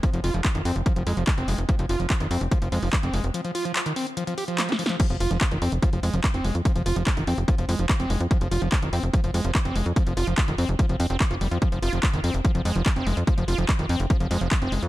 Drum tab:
CC |------------------------------------------------|------------------------------------------------|------------------------------------------------|x-----------------------------------------------|
HH |x--x--o--x--x--x--o--x--x--x--o--x--x--x--o--x--|x--x--o--x--x--x--o--x--x--x--o--o--x--x--o--x--|x--x--o--x--x--x--o--x--x--x--o--x--x--x--o--x--|x--x--o--x--x--x--o--x--x--x--o--x--x--x--o--x--|
CP |------------x-----------------------x-----------|------------x-----------------------x-----------|------------x-----------------------x-----------|------------x-----------------------x-----------|
SD |------------------------------------------------|------------------------------------------------|------------------------------------o---o---o---|------------------------------------------------|
BD |o-----------o-----------o-----------o-----------|o-----------o-----------o-----------o-----------|------------------------------------------------|o-----------o-----------o-----------o-----------|

CC |------------------------------------------------|------------------------------------------------|------------------------------------------------|------------------------------------------------|
HH |x--x--o--x--x--x--o--x--x--x--o--x--x--x--o--x--|x--x--o--x--x--x--o--x--x--x--o--x--x--x--o--x--|x--x--o--x--x--x--o--x--x--x--o--x--x--x--o--x--|x--x--o--x--x--x--o--x--x--x--o--x--x--x--o--x--|
CP |------------x-----------------------x-----------|------------x-----------------------x-----------|------------x-----------------------x-----------|------------x-----------------------x-----------|
SD |------------------------------------------------|------------------------------------------------|------------------------------------------------|------------------------------------------------|
BD |o-----------o-----------o-----------o-----------|o-----------o-----------o-----------o-----------|o-----------o-----------o-----------o-----------|o-----------o-----------o-----------o-----------|

CC |------------------------------------------------|
HH |x--x--o--x--x--x--o--x--x--x--o--x--x--x--o--x--|
CP |------------x-----------------------x-----------|
SD |------------------------------------------------|
BD |o-----------o-----------o-----------o-----------|